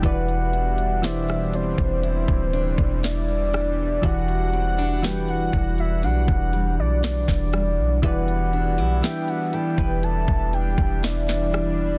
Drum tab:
HH |xxxxxxxxxxx-xxo-|xxxxxxxxxxx-xxx-|xxxxxxxxxxx-xxo-|
SD |----or------o-r-|----o-------oor-|----o-------oor-|
BD |o------o-o-o----|o-----o--o---o--|o------o-o-o----|